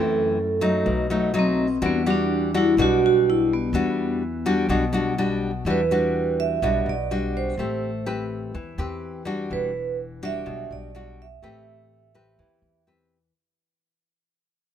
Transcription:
Already playing: upright bass F#2, nylon-string guitar F#2 E3 A3 C4, vibraphone A4
0.61 nylon-string guitar F#3 A3 D#4
0.86 upright bass B1, nylon-string guitar B2
1.10 nylon-string guitar F#3 A3 D#4
1.34 nylon-string guitar F#3 A3 D#4
1.39 vibraphone C4
1.82 upright bass E2, nylon-string guitar E3 G3 D4 F#4
1.86 vibraphone B3
2.06 nylon-string guitar G3 D4 F#4, vibraphone D4
2.54 nylon-string guitar G3 D4 F#4, vibraphone E4
2.77 upright bass B1, nylon-string guitar B2 G3 D4 F#4
2.82 vibraphone F#4
3.06 vibraphone F#4
3.30 vibraphone E4
3.53 vibraphone B3
3.73 upright bass E2, nylon-string guitar E3 G3 D4 F#4
4.46 nylon-string guitar G3 D4 F#4
4.69 upright bass B1, nylon-string guitar B2 G3 D4 F#4
4.93 nylon-string guitar G3 D4 F#4
5.18 nylon-string guitar G3 D4 F#4
5.65 upright bass E2, nylon-string guitar E3 G3 D4 F#4
5.71 vibraphone B4
5.91 nylon-string guitar G3 D4 F#4
6.40 vibraphone E5
6.62 upright bass B1, nylon-string guitar B2 G3 D4 F#4
6.86 upright bass B1, vibraphone D5
7.11 nylon-string guitar G3 D4 F#4
7.37 vibraphone C5
7.57 upright bass A1, nylon-string guitar A3 C4 G4
8.06 nylon-string guitar C4 G4 B4
8.54 upright bass E2, nylon-string guitar E3
8.78 upright bass E2, nylon-string guitar C4 G4 B4
9.25 nylon-string guitar G3 D4 F#4
9.50 upright bass E1, nylon-string guitar E3, vibraphone B4
10.23 nylon-string guitar G3 D4 F#4, vibraphone E5
10.46 upright bass B1, nylon-string guitar B2
10.71 upright bass B1, vibraphone D5
10.95 nylon-string guitar G3 D4 F#4
11.22 vibraphone E5
11.42 upright bass A1, nylon-string guitar A3 C4 G4 B4
12.15 nylon-string guitar C4 G4 B4
12.39 upright bass E2, nylon-string guitar E3
12.62 upright bass E2
12.87 nylon-string guitar C4 G4 B4

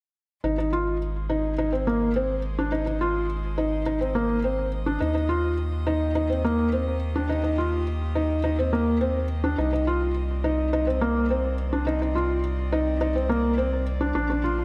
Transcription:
0.44 analog synth bass G#1, string quartet G#3, felt piano D#4
0.51 string quartet G#4
0.58 felt piano D#4
0.73 felt piano F4
0.85 string quartet D#5
1.09 string quartet C5
1.30 felt piano D#4
1.58 felt piano D#4
1.72 felt piano C4
1.87 felt piano A#3
2.16 felt piano C4
2.59 felt piano D4
2.72 felt piano D#4
2.86 felt piano D#4
3.01 felt piano F4
3.58 felt piano D#4
3.86 felt piano D#4
4.01 felt piano C4
4.15 felt piano A#3
4.44 felt piano C4
4.86 felt piano D4
5.00 analog synth bass D#2, string quartet D#3, felt piano D#4
5.14 felt piano D#4
5.29 felt piano F4
5.36 string quartet A#3 G4
5.87 felt piano D#4
6.15 felt piano D#4
6.30 felt piano C4
6.44 felt piano A#3
6.73 felt piano C4
7.16 felt piano D4
7.29 felt piano D#4
7.44 felt piano D#4
7.58 felt piano F4
8.15 felt piano D#4
8.44 felt piano D#4
8.59 felt piano C4
8.73 felt piano A#3
9.01 felt piano C4
9.44 felt piano D4
9.58 analog synth bass C2, string quartet C3, felt piano D#4
9.72 string quartet C4, felt piano D#4
9.87 felt piano F4
10.12 string quartet D5
10.44 felt piano D#4
10.73 felt piano D#4
10.87 felt piano C4
11.01 felt piano A#3
11.30 felt piano C4
11.73 felt piano D4
11.87 felt piano D#4
12.02 felt piano D#4
12.15 felt piano F4
12.72 felt piano D#4
13.01 felt piano D#4
13.15 felt piano C4
13.29 felt piano A#3
13.58 felt piano C4
14.01 felt piano D4
14.14 analog synth bass A#1, string quartet A#3, felt piano D4
14.30 felt piano D4, string quartet F4
14.36 string quartet C5
14.44 felt piano F4

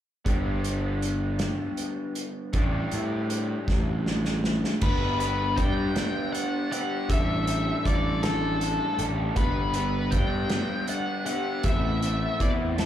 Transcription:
0.25 picked electric bass G1, clean electric guitar G2 D3 G3 B3 D4, kick, closed hi-hat
0.29 clean electric guitar G4
0.64 closed hi-hat
1.02 closed hi-hat
1.39 snare, closed hi-hat
1.77 closed hi-hat
2.15 closed hi-hat
2.53 picked electric bass A1, clean electric guitar A2 D3 G3 D4 G4, overdriven electric guitar A3, kick, closed hi-hat
2.91 picked electric bass A2, closed hi-hat
3.30 closed hi-hat
3.68 picked electric bass A1, kick, snare
4.06 snare
4.25 snare
4.44 snare
4.64 snare
4.81 picked electric bass G1, clean electric guitar G2 D3 G3 B3 D4 G4, lead electric guitar B4, kick, crash
5.19 clean electric guitar G3 B3 D4 G4, lead electric guitar B4, closed hi-hat
5.56 picked electric bass G2, clean electric guitar G3 B3, lead electric guitar G5, kick, closed hi-hat
5.61 clean electric guitar D4 G4
5.95 clean electric guitar G2 D3 G3 B3 D4 G4, snare, closed hi-hat
6.33 overdriven electric guitar D4, lead electric guitar F#5, closed hi-hat
6.70 clean electric guitar G3 B3 D4 G4, lead electric guitar F#5, closed hi-hat
7.09 picked electric bass A1, clean electric guitar A2 D3 G3 D4 A4, lead electric guitar E5, kick, closed hi-hat
7.47 overdriven electric guitar G3, clean electric guitar D4 A4, closed hi-hat
7.51 clean electric guitar G3
7.84 picked electric bass A1, clean electric guitar D3 G3 D4 A4, lead electric guitar D5, kick, closed hi-hat
8.22 clean electric guitar D3 G3 D4 A4, overdriven electric guitar A3, lead electric guitar A4, snare, closed hi-hat
8.27 clean electric guitar A2
8.61 overdriven electric guitar D4, closed hi-hat
8.98 picked electric bass A1, clean electric guitar D4 A4, overdriven electric guitar G4, closed hi-hat
9.03 clean electric guitar G3
9.35 picked electric bass G1, clean electric guitar G2 D3, overdriven electric guitar B3, lead electric guitar B4, kick, closed hi-hat
9.39 clean electric guitar G3 B3 D4 G4
9.74 clean electric guitar B3 D4 G4, lead electric guitar B4, closed hi-hat
9.78 clean electric guitar G3
10.11 picked electric bass G2, clean electric guitar G3 B3 D4, lead electric guitar G5, kick, closed hi-hat
10.15 clean electric guitar G4
10.49 clean electric guitar G2 D3 G3 B3 D4 G4, snare, closed hi-hat
10.87 overdriven electric guitar D4, lead electric guitar F#5, closed hi-hat
11.24 clean electric guitar B3 D4 G4, lead electric guitar F#5, closed hi-hat
11.28 clean electric guitar G3
11.63 picked electric bass A1, clean electric guitar A2 E3 B3 C4 E4, overdriven electric guitar A3, lead electric guitar E5, kick, closed hi-hat
12.02 overdriven electric guitar A3, clean electric guitar B3 C4 E4, closed hi-hat
12.39 picked electric bass E2, clean electric guitar E3 B3 C4, lead electric guitar D5, kick, closed hi-hat
12.44 clean electric guitar E4
12.76 clean electric guitar A2 E3 B3 C4 E4, lead electric guitar A4, snare, closed hi-hat

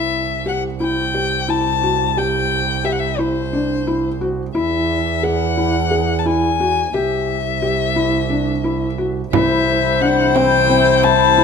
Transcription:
Already playing: double bass C2, felt piano E4, violin E5
0.46 felt piano G4, violin F#5
0.80 felt piano E4, violin G5
1.14 felt piano G4
1.48 felt piano E4, violin A5
1.83 felt piano F#4
2.17 felt piano G4, violin G5
2.84 felt piano G4, violin E5
2.92 violin F#5
2.99 violin E5
3.19 felt piano E4, violin C5
3.53 felt piano D4
3.87 felt piano E4
4.21 felt piano F#4
4.55 double bass E2, felt piano E4, violin E5
5.23 felt piano G#4, violin F#5
5.57 felt piano E4
5.91 felt piano G#4
6.19 violin A5
6.26 felt piano E4, violin G#5
6.60 felt piano F#4
6.94 double bass C2, felt piano G4, violin E5
7.62 felt piano G4
7.96 felt piano E4
8.30 felt piano D4
8.64 felt piano E4
8.98 felt piano F#4
9.33 double bass C2, string section C3 E3 E4, felt piano E4, clarinet C5, violin E5, frame drum
10.01 felt piano D4, violin F#5
10.35 felt piano C4, violin G5, frame drum
10.70 felt piano C4
11.03 violin A5, frame drum
11.38 felt piano E4

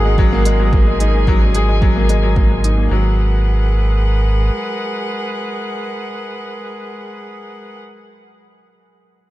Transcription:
Already playing: analog synth bass G#1, upright piano F#3 G#3 A#3 D#4 G#4, string quartet G#3 G#4 A#4 F#5
0.05 upright piano G#3
0.18 upright piano F#3, kick
0.32 upright piano A#3
0.45 upright piano G#3, closed hi-hat
0.60 upright piano F#3
0.72 upright piano A#3, string quartet G#5, kick
0.87 upright piano G#3
1.00 upright piano D#4, closed hi-hat
1.14 upright piano A#3
1.27 upright piano F#3, kick
1.42 upright piano F#3
1.55 upright piano G#4, closed hi-hat
1.69 upright piano G#3
1.82 upright piano F#3, kick
1.96 upright piano A#3
2.09 upright piano G#3, closed hi-hat
2.23 upright piano F#3
2.36 upright piano A#3, kick
2.50 upright piano G#3
2.64 upright piano D#4, closed hi-hat
2.77 upright piano A#3
2.91 analog synth bass G#1, upright piano F#3, string quartet G#3 G#4 A#4 B4 F#5

